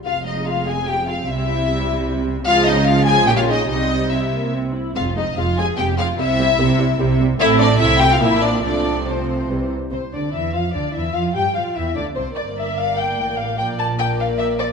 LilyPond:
<<
  \new Staff \with { instrumentName = "Violin section" } { \time 3/4 \key f \minor \tempo 4 = 147 f''8 ees''8 f''8 aes''8 g''8 f''8 | e''2~ e''8 r8 | f''8 ees''8 f''8 aes''8 g''16 f''16 ees''8 | ees''4 e''4 r4 |
f''8 ees''8 f''8 aes''8 g''8 f''8 | e''2~ e''8 r8 | \key f \major e''8 d''8 e''8 g''16 f''16 e''8 d''8 | d''4 c''4. r8 |
c''8 d''8 e''8 f''8 d''8 e''8 | f''8 g''8 f''8 e''8 d''8 c''8 | d''2. | d''4 d''2 | }
  \new Staff \with { instrumentName = "Violin section" } { \time 3/4 \key f \minor f'8 ees'8 f'8 aes'8 g'8 f'8 | e'2~ e'8 r8 | f'8 ees'8 f'8 aes'8 g'16 f'16 ees'8 | ees'4 e'4 r4 |
f'8 ees'8 f'8 aes'8 g'8 f'8 | e'2~ e'8 r8 | \key f \major e'8 d'8 e'8 g'16 f'16 e'8 d'8 | d'4 c'4. r8 |
c''8 d''8 e''8 f''8 d''8 e''8 | f''8 g''8 f''8 e''8 d''8 c''8 | d''8 e''8 f''8 g''4 f''8 | g''8 a''8 g''8 f''8 e''8 d''8 | }
  \new Staff \with { instrumentName = "Viola section" } { \time 3/4 \key f \minor << { c'2.~ | c'2. | aes4 aes4 des'4 | c'4 c'8 bes8 c'8 e'8 |
c'8 c'8 c'8 c'8 c'8 c'8 | c'8 c'8 c'8 c'8 c'8 c'8 | \key f \major c'4 c'4 bes4 | a4 a4 g8 r8 |
c'8 d'8 e'8 f'8 d'8 e'8 | f'8 g'8 f'8 e'8 d'8 c'8 | bes'2. | bes'4 bes'2 | } \\ { aes2. | g2. | f4 f4 bes8 aes8 | g4 r2 |
aes8 aes8 aes8 aes8 aes8 aes8 | g8 g8 g8 g8 g8 g8 | a4 a4 f4 | f4 f4 e8 r8 |
r2. | r2. | bes2. | bes4 bes2 | } >> }
  \new Staff \with { instrumentName = "Cello section" } { \clef bass \time 3/4 \key f \minor f,2. | c2. | des2 bes,4 | c2~ c8 r8 |
f,4 f,4 f,4 | c4 c4 c4 | \key f \major a,4 c4 bes,4 | c2 c8 r8 |
c8 d8 e8 f8 d8 e8 | f8 g8 f8 e8 d8 c8 | g,2 a,4 | bes,2. | }
  \new Staff \with { instrumentName = "Double bass section" } { \clef bass \time 3/4 \key f \minor f,,2. | c,2. | des,2 bes,,4 | c,2~ c,8 r8 |
f,,4 f,,4 f,,4 | c,4 c,4 c,4 | \key f \major a,,4 c,4 bes,,4 | c,2 c,8 r8 |
c,8 d,8 e,8 f,8 d,8 e,8 | f,8 g,8 f,8 e,8 d,8 c,8 | g,,2 a,,4 | bes,,2. | }
>>